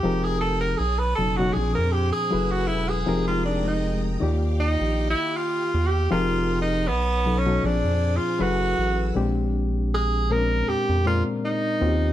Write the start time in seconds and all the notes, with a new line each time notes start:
Already playing: G4
0.02 F1 F3 C4 D#4 G4 G#4 A#4 G5 A#5 D#6
0.24 G#4
0.41 A4
0.61 A#4
0.77 B1 G#4 C#5 A5
0.99 B4
1.15 F#1 B2 F#3 C#4 D#4 A4
1.20 A4
1.37 B2 F#3 C#4 D#4 F#4
1.53 A#1 A#2 F3 C4 D4 G#4 C5 G#5 D6
1.75 F2 A#4
1.92 G4
2.13 G#4
2.31 F#1 F#3 C#4 E4 G#4 A4 B4 F#5 E6
2.52 F#4
2.67 E1 E4
2.89 G#4
3.05 F1 F3 G#3 C4 D#4 G4 G#4 A#4 G5 A#5 D#6
3.28 F4
3.45 D4
3.68 D#4
4.20 D#2 D#3 A#3 F4 G4 D5 F5 D6
4.60 D#4
4.81 A#1
5.10 E4
5.37 F4
5.74 E2
5.87 G4
6.10 F1 F3 C4 D#4 F4 G4 G#4 A#4 G5 A#5 D#6
6.62 D#4
6.86 B1 B3 C#5 A5
7.25 B2 F#3 C#4 D#4 A4
7.38 C#4
7.46 B2 F#3 C#4 D#4 A4
7.62 A#1 A#2 F3 C4 D4 G#4 C5 G#5 D6
7.85 F2
8.17 F4
8.39 F#1 F#3 C#4 E4 F#4 G#4 A4 B4 F#5 E6
8.79 A1
9.15 A#1 A#2 G#3 C4 D4 G4
9.94 G#4
10.30 A#2 G#3 C4 C#4 A#4
10.37 D4
10.69 F2 G4
10.89 F2
11.05 A#2 G#3 C4 F4 A#4 D5
11.45 D#4
11.80 D#2 D#3 A#3 C4 C#4 F4 F#4
11.89 G4